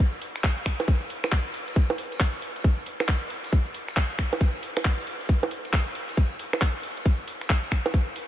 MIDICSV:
0, 0, Header, 1, 2, 480
1, 0, Start_track
1, 0, Tempo, 441176
1, 956, Time_signature, 4, 2, 24, 8
1, 9005, End_track
2, 0, Start_track
2, 0, Title_t, "Drums"
2, 0, Note_on_c, 9, 36, 117
2, 105, Note_off_c, 9, 36, 0
2, 148, Note_on_c, 9, 54, 42
2, 235, Note_on_c, 9, 46, 112
2, 256, Note_off_c, 9, 54, 0
2, 344, Note_off_c, 9, 46, 0
2, 388, Note_on_c, 9, 26, 33
2, 388, Note_on_c, 9, 42, 62
2, 391, Note_on_c, 9, 54, 83
2, 476, Note_on_c, 9, 36, 122
2, 478, Note_on_c, 9, 39, 119
2, 497, Note_off_c, 9, 26, 0
2, 497, Note_off_c, 9, 42, 0
2, 500, Note_off_c, 9, 54, 0
2, 585, Note_off_c, 9, 36, 0
2, 586, Note_off_c, 9, 39, 0
2, 628, Note_on_c, 9, 54, 43
2, 629, Note_on_c, 9, 42, 50
2, 716, Note_on_c, 9, 36, 64
2, 718, Note_on_c, 9, 26, 71
2, 718, Note_on_c, 9, 46, 94
2, 737, Note_off_c, 9, 42, 0
2, 737, Note_off_c, 9, 54, 0
2, 825, Note_off_c, 9, 36, 0
2, 826, Note_off_c, 9, 26, 0
2, 826, Note_off_c, 9, 46, 0
2, 868, Note_on_c, 9, 42, 66
2, 868, Note_on_c, 9, 60, 73
2, 873, Note_on_c, 9, 54, 82
2, 957, Note_on_c, 9, 36, 121
2, 970, Note_off_c, 9, 54, 0
2, 970, Note_on_c, 9, 54, 69
2, 977, Note_off_c, 9, 42, 0
2, 977, Note_off_c, 9, 60, 0
2, 1065, Note_off_c, 9, 36, 0
2, 1079, Note_off_c, 9, 54, 0
2, 1112, Note_on_c, 9, 54, 39
2, 1198, Note_on_c, 9, 46, 103
2, 1221, Note_off_c, 9, 54, 0
2, 1306, Note_off_c, 9, 46, 0
2, 1348, Note_on_c, 9, 54, 91
2, 1349, Note_on_c, 9, 26, 68
2, 1349, Note_on_c, 9, 42, 63
2, 1349, Note_on_c, 9, 60, 59
2, 1436, Note_on_c, 9, 36, 127
2, 1436, Note_on_c, 9, 39, 127
2, 1437, Note_off_c, 9, 54, 0
2, 1437, Note_on_c, 9, 54, 72
2, 1457, Note_off_c, 9, 26, 0
2, 1457, Note_off_c, 9, 42, 0
2, 1457, Note_off_c, 9, 60, 0
2, 1545, Note_off_c, 9, 36, 0
2, 1545, Note_off_c, 9, 39, 0
2, 1546, Note_off_c, 9, 54, 0
2, 1593, Note_on_c, 9, 54, 43
2, 1677, Note_on_c, 9, 46, 90
2, 1702, Note_off_c, 9, 54, 0
2, 1786, Note_off_c, 9, 46, 0
2, 1827, Note_on_c, 9, 42, 61
2, 1831, Note_on_c, 9, 54, 81
2, 1916, Note_off_c, 9, 54, 0
2, 1916, Note_on_c, 9, 54, 76
2, 1917, Note_on_c, 9, 36, 123
2, 1936, Note_off_c, 9, 42, 0
2, 2025, Note_off_c, 9, 36, 0
2, 2025, Note_off_c, 9, 54, 0
2, 2067, Note_on_c, 9, 54, 45
2, 2067, Note_on_c, 9, 60, 78
2, 2157, Note_on_c, 9, 46, 105
2, 2176, Note_off_c, 9, 54, 0
2, 2176, Note_off_c, 9, 60, 0
2, 2266, Note_off_c, 9, 46, 0
2, 2308, Note_on_c, 9, 42, 62
2, 2312, Note_on_c, 9, 54, 87
2, 2395, Note_on_c, 9, 39, 123
2, 2396, Note_on_c, 9, 36, 122
2, 2417, Note_off_c, 9, 42, 0
2, 2420, Note_off_c, 9, 54, 0
2, 2504, Note_off_c, 9, 39, 0
2, 2505, Note_off_c, 9, 36, 0
2, 2547, Note_on_c, 9, 42, 52
2, 2547, Note_on_c, 9, 54, 40
2, 2636, Note_on_c, 9, 46, 92
2, 2655, Note_off_c, 9, 42, 0
2, 2656, Note_off_c, 9, 54, 0
2, 2745, Note_off_c, 9, 46, 0
2, 2780, Note_on_c, 9, 54, 85
2, 2787, Note_on_c, 9, 42, 61
2, 2876, Note_on_c, 9, 36, 123
2, 2879, Note_off_c, 9, 54, 0
2, 2879, Note_on_c, 9, 54, 68
2, 2895, Note_off_c, 9, 42, 0
2, 2985, Note_off_c, 9, 36, 0
2, 2988, Note_off_c, 9, 54, 0
2, 3021, Note_on_c, 9, 54, 44
2, 3115, Note_on_c, 9, 46, 101
2, 3129, Note_off_c, 9, 54, 0
2, 3224, Note_off_c, 9, 46, 0
2, 3265, Note_on_c, 9, 54, 84
2, 3266, Note_on_c, 9, 26, 65
2, 3266, Note_on_c, 9, 42, 65
2, 3266, Note_on_c, 9, 60, 61
2, 3354, Note_on_c, 9, 39, 127
2, 3356, Note_on_c, 9, 36, 127
2, 3374, Note_off_c, 9, 54, 0
2, 3375, Note_off_c, 9, 26, 0
2, 3375, Note_off_c, 9, 42, 0
2, 3375, Note_off_c, 9, 60, 0
2, 3463, Note_off_c, 9, 39, 0
2, 3465, Note_off_c, 9, 36, 0
2, 3508, Note_on_c, 9, 54, 42
2, 3594, Note_on_c, 9, 46, 89
2, 3617, Note_off_c, 9, 54, 0
2, 3703, Note_off_c, 9, 46, 0
2, 3745, Note_on_c, 9, 42, 65
2, 3746, Note_on_c, 9, 54, 84
2, 3836, Note_off_c, 9, 54, 0
2, 3836, Note_on_c, 9, 36, 123
2, 3836, Note_on_c, 9, 54, 68
2, 3854, Note_off_c, 9, 42, 0
2, 3944, Note_off_c, 9, 54, 0
2, 3945, Note_off_c, 9, 36, 0
2, 3985, Note_on_c, 9, 54, 45
2, 4074, Note_on_c, 9, 46, 106
2, 4094, Note_off_c, 9, 54, 0
2, 4183, Note_off_c, 9, 46, 0
2, 4221, Note_on_c, 9, 54, 81
2, 4227, Note_on_c, 9, 26, 29
2, 4227, Note_on_c, 9, 42, 61
2, 4315, Note_on_c, 9, 39, 121
2, 4316, Note_on_c, 9, 36, 121
2, 4330, Note_off_c, 9, 54, 0
2, 4335, Note_off_c, 9, 26, 0
2, 4335, Note_off_c, 9, 42, 0
2, 4424, Note_off_c, 9, 36, 0
2, 4424, Note_off_c, 9, 39, 0
2, 4465, Note_on_c, 9, 54, 41
2, 4466, Note_on_c, 9, 42, 50
2, 4556, Note_on_c, 9, 26, 67
2, 4556, Note_on_c, 9, 36, 65
2, 4556, Note_on_c, 9, 46, 89
2, 4574, Note_off_c, 9, 54, 0
2, 4575, Note_off_c, 9, 42, 0
2, 4664, Note_off_c, 9, 36, 0
2, 4665, Note_off_c, 9, 26, 0
2, 4665, Note_off_c, 9, 46, 0
2, 4707, Note_on_c, 9, 42, 65
2, 4707, Note_on_c, 9, 60, 84
2, 4709, Note_on_c, 9, 54, 87
2, 4793, Note_off_c, 9, 54, 0
2, 4793, Note_on_c, 9, 54, 73
2, 4796, Note_on_c, 9, 36, 116
2, 4816, Note_off_c, 9, 42, 0
2, 4816, Note_off_c, 9, 60, 0
2, 4902, Note_off_c, 9, 54, 0
2, 4904, Note_off_c, 9, 36, 0
2, 4945, Note_on_c, 9, 54, 39
2, 5036, Note_on_c, 9, 46, 102
2, 5054, Note_off_c, 9, 54, 0
2, 5145, Note_off_c, 9, 46, 0
2, 5185, Note_on_c, 9, 54, 88
2, 5187, Note_on_c, 9, 26, 63
2, 5187, Note_on_c, 9, 42, 66
2, 5187, Note_on_c, 9, 60, 65
2, 5275, Note_on_c, 9, 39, 125
2, 5276, Note_on_c, 9, 36, 122
2, 5293, Note_off_c, 9, 54, 0
2, 5296, Note_off_c, 9, 26, 0
2, 5296, Note_off_c, 9, 42, 0
2, 5296, Note_off_c, 9, 60, 0
2, 5384, Note_off_c, 9, 39, 0
2, 5385, Note_off_c, 9, 36, 0
2, 5421, Note_on_c, 9, 54, 39
2, 5517, Note_on_c, 9, 46, 91
2, 5530, Note_off_c, 9, 54, 0
2, 5626, Note_off_c, 9, 46, 0
2, 5666, Note_on_c, 9, 54, 72
2, 5668, Note_on_c, 9, 42, 68
2, 5756, Note_on_c, 9, 36, 116
2, 5762, Note_off_c, 9, 54, 0
2, 5762, Note_on_c, 9, 54, 66
2, 5776, Note_off_c, 9, 42, 0
2, 5865, Note_off_c, 9, 36, 0
2, 5870, Note_off_c, 9, 54, 0
2, 5902, Note_on_c, 9, 54, 44
2, 5908, Note_on_c, 9, 60, 86
2, 5996, Note_on_c, 9, 46, 107
2, 6011, Note_off_c, 9, 54, 0
2, 6016, Note_off_c, 9, 60, 0
2, 6105, Note_off_c, 9, 46, 0
2, 6145, Note_on_c, 9, 54, 75
2, 6148, Note_on_c, 9, 42, 64
2, 6236, Note_on_c, 9, 36, 121
2, 6237, Note_on_c, 9, 39, 116
2, 6254, Note_off_c, 9, 54, 0
2, 6257, Note_off_c, 9, 42, 0
2, 6345, Note_off_c, 9, 36, 0
2, 6345, Note_off_c, 9, 39, 0
2, 6388, Note_on_c, 9, 42, 55
2, 6388, Note_on_c, 9, 54, 38
2, 6476, Note_on_c, 9, 46, 88
2, 6497, Note_off_c, 9, 42, 0
2, 6497, Note_off_c, 9, 54, 0
2, 6585, Note_off_c, 9, 46, 0
2, 6625, Note_on_c, 9, 54, 84
2, 6627, Note_on_c, 9, 42, 68
2, 6717, Note_on_c, 9, 36, 112
2, 6723, Note_off_c, 9, 54, 0
2, 6723, Note_on_c, 9, 54, 71
2, 6735, Note_off_c, 9, 42, 0
2, 6826, Note_off_c, 9, 36, 0
2, 6831, Note_off_c, 9, 54, 0
2, 6857, Note_on_c, 9, 54, 38
2, 6957, Note_on_c, 9, 46, 104
2, 6966, Note_off_c, 9, 54, 0
2, 7066, Note_off_c, 9, 46, 0
2, 7108, Note_on_c, 9, 26, 65
2, 7108, Note_on_c, 9, 42, 68
2, 7108, Note_on_c, 9, 60, 64
2, 7120, Note_on_c, 9, 54, 74
2, 7192, Note_off_c, 9, 54, 0
2, 7192, Note_on_c, 9, 54, 66
2, 7197, Note_on_c, 9, 36, 116
2, 7197, Note_on_c, 9, 39, 122
2, 7217, Note_off_c, 9, 26, 0
2, 7217, Note_off_c, 9, 42, 0
2, 7217, Note_off_c, 9, 60, 0
2, 7301, Note_off_c, 9, 54, 0
2, 7305, Note_off_c, 9, 39, 0
2, 7306, Note_off_c, 9, 36, 0
2, 7351, Note_on_c, 9, 54, 38
2, 7436, Note_on_c, 9, 46, 90
2, 7460, Note_off_c, 9, 54, 0
2, 7545, Note_off_c, 9, 46, 0
2, 7584, Note_on_c, 9, 54, 68
2, 7587, Note_on_c, 9, 42, 72
2, 7677, Note_on_c, 9, 36, 113
2, 7682, Note_off_c, 9, 54, 0
2, 7682, Note_on_c, 9, 54, 65
2, 7695, Note_off_c, 9, 42, 0
2, 7786, Note_off_c, 9, 36, 0
2, 7791, Note_off_c, 9, 54, 0
2, 7836, Note_on_c, 9, 54, 39
2, 7917, Note_on_c, 9, 46, 109
2, 7945, Note_off_c, 9, 54, 0
2, 8025, Note_off_c, 9, 46, 0
2, 8064, Note_on_c, 9, 54, 76
2, 8067, Note_on_c, 9, 26, 30
2, 8067, Note_on_c, 9, 42, 69
2, 8157, Note_on_c, 9, 36, 115
2, 8157, Note_on_c, 9, 39, 109
2, 8173, Note_off_c, 9, 54, 0
2, 8176, Note_off_c, 9, 26, 0
2, 8176, Note_off_c, 9, 42, 0
2, 8265, Note_off_c, 9, 36, 0
2, 8266, Note_off_c, 9, 39, 0
2, 8309, Note_on_c, 9, 42, 56
2, 8313, Note_on_c, 9, 54, 36
2, 8397, Note_on_c, 9, 26, 66
2, 8397, Note_on_c, 9, 36, 60
2, 8397, Note_on_c, 9, 46, 95
2, 8417, Note_off_c, 9, 42, 0
2, 8422, Note_off_c, 9, 54, 0
2, 8506, Note_off_c, 9, 26, 0
2, 8506, Note_off_c, 9, 36, 0
2, 8506, Note_off_c, 9, 46, 0
2, 8547, Note_on_c, 9, 54, 72
2, 8548, Note_on_c, 9, 42, 67
2, 8548, Note_on_c, 9, 60, 85
2, 8637, Note_off_c, 9, 54, 0
2, 8637, Note_on_c, 9, 36, 111
2, 8637, Note_on_c, 9, 54, 65
2, 8657, Note_off_c, 9, 42, 0
2, 8657, Note_off_c, 9, 60, 0
2, 8746, Note_off_c, 9, 36, 0
2, 8746, Note_off_c, 9, 54, 0
2, 8788, Note_on_c, 9, 54, 34
2, 8876, Note_on_c, 9, 46, 115
2, 8897, Note_off_c, 9, 54, 0
2, 8985, Note_off_c, 9, 46, 0
2, 9005, End_track
0, 0, End_of_file